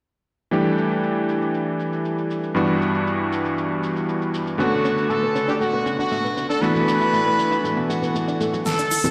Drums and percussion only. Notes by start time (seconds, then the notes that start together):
0.53 shaker
0.78 shaker
0.91 shaker
1.03 shaker
1.29 shaker
1.42 shaker
1.54 shaker
1.80 shaker
1.93 shaker
2.05 shaker
2.18 shaker
2.31 shaker
2.44 shaker
2.56 shaker
2.82 shaker
2.95 shaker
3.07 shaker
3.33 shaker
3.45 shaker
3.58 shaker
3.83 shaker
3.96 shaker
4.09 shaker
4.22 shaker
4.34 shaker
4.47 shaker
4.60 shaker
4.85 shaker
4.98 shaker
5.10 shaker
5.36 shaker
5.49 shaker
5.61 shaker
5.87 shaker
6.00 shaker
6.12 shaker
6.25 shaker
6.38 shaker
6.51 shaker
6.63 shaker
6.76 shaker
6.88 shaker
7.01 shaker
7.14 shaker
7.39 shaker
7.52 shaker
7.65 shaker
7.90 shaker
8.03 shaker
8.16 shaker
8.28 shaker
8.41 shaker
8.54 shaker
8.66 snare, closed hi-hat, shaker
8.78 closed hi-hat, shaker
8.91 open hi-hat, shaker
9.04 closed hi-hat, high conga, low conga, shaker